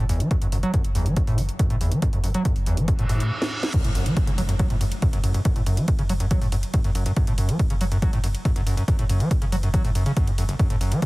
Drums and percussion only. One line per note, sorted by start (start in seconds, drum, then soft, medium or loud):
0.09 open hi-hat loud
0.20 closed hi-hat medium
0.31 kick loud
0.31 closed hi-hat medium
0.42 closed hi-hat soft
0.52 open hi-hat loud
0.63 closed hi-hat medium
0.74 kick loud
0.74 closed hi-hat medium
0.84 closed hi-hat medium
0.95 open hi-hat loud
1.06 closed hi-hat medium
1.17 kick loud
1.17 closed hi-hat medium
1.27 open hi-hat medium
1.38 open hi-hat loud
1.49 closed hi-hat medium
1.59 kick loud
1.59 closed hi-hat medium
1.70 closed hi-hat medium
1.81 open hi-hat loud
1.92 closed hi-hat medium
2.02 kick loud
2.02 closed hi-hat medium
2.13 closed hi-hat medium
2.24 open hi-hat loud
2.34 closed hi-hat medium
2.45 kick loud
2.45 closed hi-hat medium
2.56 open hi-hat medium
2.66 open hi-hat loud
2.77 closed hi-hat medium
2.88 kick loud
2.88 closed hi-hat medium
2.99 closed hi-hat medium
3.09 open hi-hat loud
3.20 closed hi-hat medium
3.42 snare medium
3.63 snare loud
3.74 kick loud
3.74 closed hi-hat medium
3.74 crash loud
3.74 ride medium
3.84 closed hi-hat medium
3.84 ride medium
3.95 open hi-hat loud
3.95 ride medium
4.06 closed hi-hat medium
4.06 ride medium
4.17 kick loud
4.17 closed hi-hat medium
4.17 ride medium
4.27 closed hi-hat medium
4.27 ride medium
4.38 open hi-hat loud
4.38 ride medium
4.49 closed hi-hat medium
4.49 ride medium
4.59 kick loud
4.59 closed hi-hat medium
4.59 ride medium
4.70 closed hi-hat medium
4.70 ride medium
4.81 open hi-hat loud
4.81 ride medium
4.92 closed hi-hat medium
4.92 ride medium
5.02 kick loud
5.02 closed hi-hat medium
5.02 ride medium
5.13 closed hi-hat medium
5.13 ride medium
5.24 open hi-hat loud
5.24 ride medium
5.34 closed hi-hat medium
5.34 ride medium
5.45 kick loud
5.45 closed hi-hat medium
5.45 ride medium
5.56 closed hi-hat medium
5.56 ride medium
5.66 open hi-hat loud
5.66 ride medium
5.77 closed hi-hat medium
5.77 ride medium
5.88 kick loud
5.88 closed hi-hat medium
5.88 ride medium
5.99 closed hi-hat medium
5.99 ride medium
6.09 open hi-hat loud
6.09 ride medium
6.20 closed hi-hat medium
6.20 ride medium
6.31 kick loud
6.31 closed hi-hat medium
6.31 ride medium
6.42 open hi-hat medium
6.42 ride medium
6.52 open hi-hat loud
6.52 ride medium
6.63 closed hi-hat medium
6.63 ride medium
6.74 kick loud
6.74 closed hi-hat medium
6.74 ride medium
6.84 closed hi-hat medium
6.84 ride medium
6.95 open hi-hat loud
6.95 ride medium
7.06 closed hi-hat medium
7.06 ride medium
7.16 kick loud
7.16 closed hi-hat medium
7.16 ride medium
7.27 closed hi-hat medium
7.27 ride medium
7.38 open hi-hat loud
7.38 ride medium
7.49 closed hi-hat medium
7.49 ride medium
7.59 kick loud
7.59 closed hi-hat medium
7.59 ride medium
7.70 closed hi-hat medium
7.70 ride medium
7.81 open hi-hat loud
7.81 ride medium
7.92 closed hi-hat medium
7.92 ride medium
8.02 kick loud
8.02 closed hi-hat medium
8.02 ride medium
8.13 closed hi-hat medium
8.13 ride medium
8.24 open hi-hat loud
8.24 ride medium
8.35 closed hi-hat medium
8.35 ride medium
8.45 kick loud
8.45 closed hi-hat medium
8.45 ride medium
8.56 closed hi-hat medium
8.56 ride medium
8.67 open hi-hat loud
8.67 ride medium
8.77 closed hi-hat medium
8.77 ride medium
8.88 kick loud
8.88 closed hi-hat medium
8.88 ride medium
8.99 closed hi-hat medium
8.99 ride medium
9.09 open hi-hat loud
9.09 ride medium
9.20 closed hi-hat medium
9.20 ride medium
9.31 kick loud
9.31 closed hi-hat medium
9.31 ride medium
9.42 closed hi-hat medium
9.42 ride medium
9.52 open hi-hat loud
9.52 ride medium
9.63 closed hi-hat medium
9.63 ride medium
9.74 kick loud
9.74 closed hi-hat medium
9.74 ride medium
9.85 open hi-hat medium
9.85 ride medium
9.95 open hi-hat loud
9.95 ride medium
10.06 closed hi-hat medium
10.06 ride medium
10.17 kick loud
10.17 closed hi-hat medium
10.17 ride medium
10.27 closed hi-hat medium
10.27 ride medium
10.38 open hi-hat loud
10.38 ride medium
10.49 closed hi-hat medium
10.49 ride medium
10.59 kick loud
10.59 closed hi-hat medium
10.59 ride medium
10.70 closed hi-hat medium
10.70 ride medium
10.81 open hi-hat loud
10.81 ride medium
10.92 closed hi-hat medium
10.92 ride medium
11.02 kick loud
11.02 closed hi-hat medium
11.02 ride medium